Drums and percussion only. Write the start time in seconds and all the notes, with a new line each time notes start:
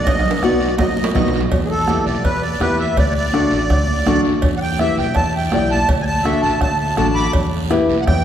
0.06 bombo low, cowbell, high timbale, long guiro
0.19 high timbale
0.25 low conga
0.31 high timbale
0.42 bombo rim, high conga, short guiro
0.60 short guiro
0.78 bombo low, bombo rim, cowbell, high conga, low timbale, long guiro
0.97 high conga
1.04 low timbale
1.15 bombo low, bombo rim, low conga, short guiro
1.28 low timbale
1.33 low conga, short guiro
1.41 low timbale
1.52 bombo low, cowbell, long guiro
1.87 bombo rim, high conga, short guiro
2.07 short guiro
2.24 bombo low, cowbell, long guiro
2.60 bombo rim, high conga, low timbale, short guiro
2.79 short guiro
2.97 bombo low, cowbell, long guiro
3.32 bombo rim, high conga, short guiro
3.51 short guiro
3.70 bombo low, bombo rim, cowbell, long guiro
3.88 high conga
4.06 bombo low, bombo rim, high conga, low conga, short guiro
4.25 short guiro
4.42 bombo low, cowbell, long guiro
4.79 bombo rim, high conga, short guiro
4.97 short guiro
5.15 bombo low, bombo rim, cowbell, long guiro
5.51 bombo rim, high conga, low timbale, short guiro
5.70 short guiro
5.89 bombo low, cowbell, long guiro
6.25 bombo rim, high conga, short guiro
6.44 short guiro
6.61 bombo low, bombo rim, cowbell, long guiro
6.97 bombo rim, high conga, low conga, short guiro
7.17 short guiro
7.33 bombo low, cowbell, long guiro
7.71 bombo rim, high conga, short guiro
7.90 short guiro
8.07 bombo low, bombo rim, cowbell, long guiro